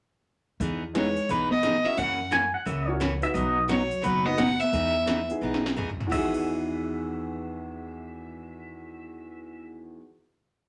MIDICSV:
0, 0, Header, 1, 8, 480
1, 0, Start_track
1, 0, Key_signature, 4, "major"
1, 0, Tempo, 345224
1, 844, Time_signature, 4, 2, 24, 8
1, 14858, End_track
2, 0, Start_track
2, 0, Title_t, "Pedal steel guitar"
2, 0, Program_c, 0, 26
2, 3233, Note_on_c, 0, 80, 87
2, 3524, Note_off_c, 0, 80, 0
2, 3533, Note_on_c, 0, 78, 75
2, 3703, Note_off_c, 0, 78, 0
2, 3705, Note_on_c, 0, 76, 77
2, 4013, Note_off_c, 0, 76, 0
2, 4013, Note_on_c, 0, 73, 78
2, 4474, Note_off_c, 0, 73, 0
2, 4495, Note_on_c, 0, 76, 75
2, 4639, Note_off_c, 0, 76, 0
2, 4645, Note_on_c, 0, 75, 96
2, 5032, Note_off_c, 0, 75, 0
2, 8507, Note_on_c, 0, 76, 93
2, 13418, Note_off_c, 0, 76, 0
2, 14858, End_track
3, 0, Start_track
3, 0, Title_t, "Fiddle"
3, 0, Program_c, 1, 110
3, 1337, Note_on_c, 1, 73, 75
3, 1814, Note_on_c, 1, 71, 90
3, 1835, Note_off_c, 1, 73, 0
3, 2101, Note_off_c, 1, 71, 0
3, 2109, Note_on_c, 1, 75, 90
3, 2574, Note_on_c, 1, 76, 100
3, 2595, Note_off_c, 1, 75, 0
3, 2750, Note_on_c, 1, 78, 100
3, 2771, Note_off_c, 1, 76, 0
3, 3229, Note_off_c, 1, 78, 0
3, 5132, Note_on_c, 1, 73, 78
3, 5618, Note_on_c, 1, 71, 89
3, 5639, Note_off_c, 1, 73, 0
3, 5910, Note_on_c, 1, 75, 93
3, 5931, Note_off_c, 1, 71, 0
3, 6088, Note_on_c, 1, 78, 112
3, 6109, Note_off_c, 1, 75, 0
3, 6393, Note_on_c, 1, 76, 111
3, 6414, Note_off_c, 1, 78, 0
3, 7358, Note_off_c, 1, 76, 0
3, 14858, End_track
4, 0, Start_track
4, 0, Title_t, "Upright piano"
4, 0, Program_c, 2, 0
4, 1298, Note_on_c, 2, 63, 61
4, 1301, Note_on_c, 2, 64, 59
4, 1312, Note_on_c, 2, 68, 55
4, 1315, Note_on_c, 2, 71, 65
4, 1581, Note_off_c, 2, 63, 0
4, 1582, Note_off_c, 2, 64, 0
4, 1588, Note_off_c, 2, 68, 0
4, 1589, Note_off_c, 2, 71, 0
4, 2562, Note_on_c, 2, 61, 63
4, 2567, Note_on_c, 2, 64, 57
4, 2579, Note_on_c, 2, 66, 54
4, 2585, Note_on_c, 2, 70, 68
4, 2728, Note_off_c, 2, 61, 0
4, 2731, Note_off_c, 2, 64, 0
4, 2737, Note_off_c, 2, 66, 0
4, 2739, Note_off_c, 2, 70, 0
4, 3993, Note_on_c, 2, 61, 76
4, 3997, Note_on_c, 2, 64, 66
4, 4011, Note_on_c, 2, 66, 68
4, 4016, Note_on_c, 2, 70, 84
4, 4160, Note_off_c, 2, 61, 0
4, 4162, Note_off_c, 2, 64, 0
4, 4169, Note_off_c, 2, 66, 0
4, 4171, Note_off_c, 2, 70, 0
4, 4462, Note_on_c, 2, 59, 66
4, 4468, Note_on_c, 2, 63, 60
4, 4478, Note_on_c, 2, 66, 63
4, 4483, Note_on_c, 2, 71, 70
4, 5094, Note_off_c, 2, 59, 0
4, 5097, Note_off_c, 2, 63, 0
4, 5102, Note_off_c, 2, 66, 0
4, 5104, Note_off_c, 2, 71, 0
4, 5899, Note_on_c, 2, 59, 67
4, 5914, Note_on_c, 2, 63, 60
4, 5923, Note_on_c, 2, 66, 61
4, 5935, Note_on_c, 2, 71, 74
4, 6070, Note_off_c, 2, 59, 0
4, 6077, Note_off_c, 2, 63, 0
4, 6082, Note_off_c, 2, 66, 0
4, 6088, Note_off_c, 2, 71, 0
4, 7357, Note_on_c, 2, 59, 54
4, 7364, Note_on_c, 2, 63, 49
4, 7376, Note_on_c, 2, 64, 52
4, 7377, Note_on_c, 2, 68, 65
4, 7983, Note_off_c, 2, 59, 0
4, 7986, Note_off_c, 2, 63, 0
4, 7993, Note_off_c, 2, 64, 0
4, 7993, Note_off_c, 2, 68, 0
4, 8430, Note_on_c, 2, 40, 75
4, 8461, Note_on_c, 2, 52, 65
4, 8510, Note_on_c, 2, 51, 64
4, 8550, Note_on_c, 2, 66, 68
4, 8596, Note_on_c, 2, 68, 77
4, 13844, Note_off_c, 2, 40, 0
4, 13875, Note_off_c, 2, 52, 0
4, 13924, Note_off_c, 2, 51, 0
4, 13964, Note_off_c, 2, 66, 0
4, 14010, Note_off_c, 2, 68, 0
4, 14858, End_track
5, 0, Start_track
5, 0, Title_t, "Hollow-body jazz guitar"
5, 0, Program_c, 3, 26
5, 1335, Note_on_c, 3, 56, 66
5, 1804, Note_off_c, 3, 56, 0
5, 2099, Note_on_c, 3, 59, 76
5, 2576, Note_off_c, 3, 59, 0
5, 2576, Note_on_c, 3, 61, 75
5, 2738, Note_off_c, 3, 61, 0
5, 5917, Note_on_c, 3, 59, 72
5, 6079, Note_off_c, 3, 59, 0
5, 6430, Note_on_c, 3, 59, 69
5, 7377, Note_off_c, 3, 59, 0
5, 14858, End_track
6, 0, Start_track
6, 0, Title_t, "Steel-string acoustic guitar"
6, 0, Program_c, 4, 25
6, 839, Note_on_c, 4, 52, 56
6, 846, Note_on_c, 4, 59, 58
6, 851, Note_on_c, 4, 63, 55
6, 856, Note_on_c, 4, 68, 59
6, 1138, Note_off_c, 4, 52, 0
6, 1142, Note_off_c, 4, 59, 0
6, 1145, Note_off_c, 4, 63, 0
6, 1147, Note_off_c, 4, 68, 0
6, 1327, Note_on_c, 4, 52, 62
6, 1331, Note_on_c, 4, 59, 65
6, 1334, Note_on_c, 4, 63, 65
6, 1335, Note_on_c, 4, 68, 66
6, 1481, Note_off_c, 4, 52, 0
6, 1483, Note_off_c, 4, 59, 0
6, 1485, Note_off_c, 4, 63, 0
6, 1486, Note_off_c, 4, 68, 0
6, 1809, Note_on_c, 4, 52, 55
6, 1819, Note_on_c, 4, 59, 60
6, 1824, Note_on_c, 4, 63, 54
6, 1824, Note_on_c, 4, 68, 58
6, 2100, Note_off_c, 4, 52, 0
6, 2105, Note_off_c, 4, 59, 0
6, 2108, Note_off_c, 4, 63, 0
6, 2108, Note_off_c, 4, 68, 0
6, 2275, Note_on_c, 4, 52, 65
6, 2290, Note_on_c, 4, 59, 74
6, 2290, Note_on_c, 4, 63, 75
6, 2299, Note_on_c, 4, 68, 81
6, 2432, Note_off_c, 4, 52, 0
6, 2440, Note_off_c, 4, 59, 0
6, 2440, Note_off_c, 4, 63, 0
6, 2445, Note_off_c, 4, 68, 0
6, 2752, Note_on_c, 4, 52, 58
6, 2759, Note_on_c, 4, 49, 54
6, 2761, Note_on_c, 4, 58, 55
6, 2766, Note_on_c, 4, 61, 59
6, 2774, Note_on_c, 4, 66, 58
6, 3049, Note_off_c, 4, 52, 0
6, 3053, Note_off_c, 4, 49, 0
6, 3053, Note_off_c, 4, 58, 0
6, 3056, Note_off_c, 4, 61, 0
6, 3060, Note_off_c, 4, 66, 0
6, 3210, Note_on_c, 4, 52, 59
6, 3213, Note_on_c, 4, 49, 60
6, 3217, Note_on_c, 4, 58, 66
6, 3221, Note_on_c, 4, 61, 66
6, 3222, Note_on_c, 4, 66, 61
6, 3377, Note_off_c, 4, 52, 0
6, 3379, Note_off_c, 4, 49, 0
6, 3381, Note_off_c, 4, 58, 0
6, 3383, Note_off_c, 4, 61, 0
6, 3383, Note_off_c, 4, 66, 0
6, 3691, Note_on_c, 4, 49, 60
6, 3693, Note_on_c, 4, 52, 59
6, 3705, Note_on_c, 4, 58, 56
6, 3706, Note_on_c, 4, 61, 56
6, 3712, Note_on_c, 4, 66, 66
6, 3996, Note_off_c, 4, 49, 0
6, 3997, Note_off_c, 4, 52, 0
6, 4003, Note_off_c, 4, 58, 0
6, 4004, Note_off_c, 4, 61, 0
6, 4007, Note_off_c, 4, 66, 0
6, 4172, Note_on_c, 4, 49, 65
6, 4173, Note_on_c, 4, 58, 68
6, 4175, Note_on_c, 4, 52, 73
6, 4185, Note_on_c, 4, 61, 72
6, 4185, Note_on_c, 4, 66, 76
6, 4336, Note_off_c, 4, 49, 0
6, 4336, Note_off_c, 4, 58, 0
6, 4337, Note_off_c, 4, 52, 0
6, 4342, Note_off_c, 4, 66, 0
6, 4343, Note_off_c, 4, 61, 0
6, 4640, Note_on_c, 4, 54, 55
6, 4644, Note_on_c, 4, 47, 57
6, 4654, Note_on_c, 4, 66, 61
6, 4657, Note_on_c, 4, 63, 54
6, 4660, Note_on_c, 4, 59, 58
6, 4949, Note_off_c, 4, 54, 0
6, 4951, Note_off_c, 4, 47, 0
6, 4956, Note_off_c, 4, 66, 0
6, 4957, Note_off_c, 4, 63, 0
6, 4959, Note_off_c, 4, 59, 0
6, 5116, Note_on_c, 4, 47, 66
6, 5119, Note_on_c, 4, 54, 64
6, 5127, Note_on_c, 4, 63, 68
6, 5128, Note_on_c, 4, 59, 73
6, 5131, Note_on_c, 4, 66, 70
6, 5286, Note_off_c, 4, 47, 0
6, 5288, Note_off_c, 4, 54, 0
6, 5291, Note_off_c, 4, 63, 0
6, 5292, Note_off_c, 4, 59, 0
6, 5294, Note_off_c, 4, 66, 0
6, 5583, Note_on_c, 4, 47, 58
6, 5592, Note_on_c, 4, 54, 56
6, 5602, Note_on_c, 4, 66, 58
6, 5603, Note_on_c, 4, 59, 58
6, 5603, Note_on_c, 4, 63, 57
6, 5899, Note_off_c, 4, 47, 0
6, 5904, Note_off_c, 4, 54, 0
6, 5909, Note_off_c, 4, 66, 0
6, 5910, Note_off_c, 4, 59, 0
6, 5910, Note_off_c, 4, 63, 0
6, 6085, Note_on_c, 4, 47, 71
6, 6085, Note_on_c, 4, 54, 72
6, 6095, Note_on_c, 4, 59, 80
6, 6101, Note_on_c, 4, 63, 83
6, 6107, Note_on_c, 4, 66, 76
6, 6250, Note_off_c, 4, 47, 0
6, 6250, Note_off_c, 4, 54, 0
6, 6255, Note_off_c, 4, 59, 0
6, 6258, Note_off_c, 4, 63, 0
6, 6261, Note_off_c, 4, 66, 0
6, 6563, Note_on_c, 4, 52, 53
6, 6571, Note_on_c, 4, 59, 61
6, 6574, Note_on_c, 4, 63, 61
6, 6589, Note_on_c, 4, 68, 59
6, 6870, Note_off_c, 4, 52, 0
6, 6874, Note_off_c, 4, 59, 0
6, 6875, Note_off_c, 4, 63, 0
6, 6882, Note_off_c, 4, 68, 0
6, 7034, Note_on_c, 4, 52, 66
6, 7043, Note_on_c, 4, 59, 62
6, 7053, Note_on_c, 4, 63, 72
6, 7063, Note_on_c, 4, 68, 59
6, 7205, Note_off_c, 4, 52, 0
6, 7210, Note_off_c, 4, 59, 0
6, 7214, Note_off_c, 4, 63, 0
6, 7219, Note_off_c, 4, 68, 0
6, 7524, Note_on_c, 4, 52, 54
6, 7532, Note_on_c, 4, 59, 52
6, 7549, Note_on_c, 4, 63, 63
6, 7555, Note_on_c, 4, 68, 58
6, 7831, Note_off_c, 4, 52, 0
6, 7835, Note_off_c, 4, 59, 0
6, 7844, Note_off_c, 4, 63, 0
6, 7847, Note_off_c, 4, 68, 0
6, 8013, Note_on_c, 4, 59, 72
6, 8014, Note_on_c, 4, 52, 65
6, 8021, Note_on_c, 4, 63, 74
6, 8031, Note_on_c, 4, 68, 69
6, 8176, Note_off_c, 4, 52, 0
6, 8176, Note_off_c, 4, 59, 0
6, 8180, Note_off_c, 4, 63, 0
6, 8185, Note_off_c, 4, 68, 0
6, 8475, Note_on_c, 4, 52, 65
6, 8498, Note_on_c, 4, 59, 68
6, 8524, Note_on_c, 4, 68, 81
6, 13889, Note_off_c, 4, 52, 0
6, 13912, Note_off_c, 4, 59, 0
6, 13938, Note_off_c, 4, 68, 0
6, 14858, End_track
7, 0, Start_track
7, 0, Title_t, "Upright bass"
7, 0, Program_c, 5, 32
7, 833, Note_on_c, 5, 40, 93
7, 1601, Note_off_c, 5, 40, 0
7, 1796, Note_on_c, 5, 35, 72
7, 2560, Note_off_c, 5, 35, 0
7, 2743, Note_on_c, 5, 42, 90
7, 3511, Note_off_c, 5, 42, 0
7, 3703, Note_on_c, 5, 37, 73
7, 4469, Note_off_c, 5, 37, 0
7, 4649, Note_on_c, 5, 35, 89
7, 5420, Note_off_c, 5, 35, 0
7, 5614, Note_on_c, 5, 30, 73
7, 6384, Note_off_c, 5, 30, 0
7, 6571, Note_on_c, 5, 40, 91
7, 7343, Note_off_c, 5, 40, 0
7, 7529, Note_on_c, 5, 35, 69
7, 8304, Note_off_c, 5, 35, 0
7, 8501, Note_on_c, 5, 40, 86
7, 13860, Note_off_c, 5, 40, 0
7, 14858, End_track
8, 0, Start_track
8, 0, Title_t, "Drums"
8, 842, Note_on_c, 9, 36, 34
8, 846, Note_on_c, 9, 46, 47
8, 981, Note_off_c, 9, 36, 0
8, 985, Note_off_c, 9, 46, 0
8, 1321, Note_on_c, 9, 38, 58
8, 1321, Note_on_c, 9, 42, 47
8, 1460, Note_off_c, 9, 38, 0
8, 1460, Note_off_c, 9, 42, 0
8, 1622, Note_on_c, 9, 46, 36
8, 1761, Note_off_c, 9, 46, 0
8, 1796, Note_on_c, 9, 36, 33
8, 1797, Note_on_c, 9, 46, 44
8, 1935, Note_off_c, 9, 36, 0
8, 1936, Note_off_c, 9, 46, 0
8, 2268, Note_on_c, 9, 38, 63
8, 2268, Note_on_c, 9, 42, 54
8, 2407, Note_off_c, 9, 38, 0
8, 2407, Note_off_c, 9, 42, 0
8, 2748, Note_on_c, 9, 46, 44
8, 2749, Note_on_c, 9, 36, 34
8, 2887, Note_off_c, 9, 46, 0
8, 2888, Note_off_c, 9, 36, 0
8, 3226, Note_on_c, 9, 38, 58
8, 3226, Note_on_c, 9, 42, 47
8, 3365, Note_off_c, 9, 38, 0
8, 3365, Note_off_c, 9, 42, 0
8, 3705, Note_on_c, 9, 36, 34
8, 3711, Note_on_c, 9, 46, 47
8, 3844, Note_off_c, 9, 36, 0
8, 3850, Note_off_c, 9, 46, 0
8, 4186, Note_on_c, 9, 38, 65
8, 4186, Note_on_c, 9, 42, 51
8, 4325, Note_off_c, 9, 38, 0
8, 4325, Note_off_c, 9, 42, 0
8, 4480, Note_on_c, 9, 46, 38
8, 4619, Note_off_c, 9, 46, 0
8, 4656, Note_on_c, 9, 36, 31
8, 4661, Note_on_c, 9, 46, 42
8, 4795, Note_off_c, 9, 36, 0
8, 4800, Note_off_c, 9, 46, 0
8, 5137, Note_on_c, 9, 38, 60
8, 5137, Note_on_c, 9, 42, 52
8, 5276, Note_off_c, 9, 38, 0
8, 5276, Note_off_c, 9, 42, 0
8, 5439, Note_on_c, 9, 46, 36
8, 5578, Note_off_c, 9, 46, 0
8, 5614, Note_on_c, 9, 36, 35
8, 5615, Note_on_c, 9, 46, 49
8, 5753, Note_off_c, 9, 36, 0
8, 5754, Note_off_c, 9, 46, 0
8, 6094, Note_on_c, 9, 38, 65
8, 6094, Note_on_c, 9, 42, 53
8, 6233, Note_off_c, 9, 38, 0
8, 6233, Note_off_c, 9, 42, 0
8, 6395, Note_on_c, 9, 46, 41
8, 6534, Note_off_c, 9, 46, 0
8, 6575, Note_on_c, 9, 36, 32
8, 6582, Note_on_c, 9, 46, 42
8, 6714, Note_off_c, 9, 36, 0
8, 6721, Note_off_c, 9, 46, 0
8, 7056, Note_on_c, 9, 38, 69
8, 7056, Note_on_c, 9, 42, 53
8, 7195, Note_off_c, 9, 38, 0
8, 7195, Note_off_c, 9, 42, 0
8, 7366, Note_on_c, 9, 46, 40
8, 7505, Note_off_c, 9, 46, 0
8, 7705, Note_on_c, 9, 38, 54
8, 7844, Note_off_c, 9, 38, 0
8, 7870, Note_on_c, 9, 38, 68
8, 8009, Note_off_c, 9, 38, 0
8, 8032, Note_on_c, 9, 43, 59
8, 8172, Note_off_c, 9, 43, 0
8, 8193, Note_on_c, 9, 43, 66
8, 8332, Note_off_c, 9, 43, 0
8, 8349, Note_on_c, 9, 43, 86
8, 8488, Note_off_c, 9, 43, 0
8, 8508, Note_on_c, 9, 36, 57
8, 8513, Note_on_c, 9, 49, 66
8, 8647, Note_off_c, 9, 36, 0
8, 8652, Note_off_c, 9, 49, 0
8, 8819, Note_on_c, 9, 49, 41
8, 8958, Note_off_c, 9, 49, 0
8, 14858, End_track
0, 0, End_of_file